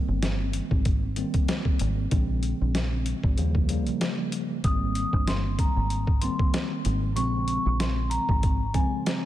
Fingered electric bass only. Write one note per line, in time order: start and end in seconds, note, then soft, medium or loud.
0.08 0.60 G1 loud
0.71 1.23 G#1 medium
1.81 2.06 G#1 medium
2.12 2.52 A#1 loud
2.61 3.12 A#1 medium
3.24 3.35 G#1 medium
3.38 3.90 D#2 loud
4.64 5.04 G#1 loud
5.13 5.65 G1 medium
5.77 6.28 G#1 medium
6.86 7.17 G#1 loud
7.17 7.57 A#1 loud
7.66 8.17 A#1 loud
8.29 8.80 G#1 medium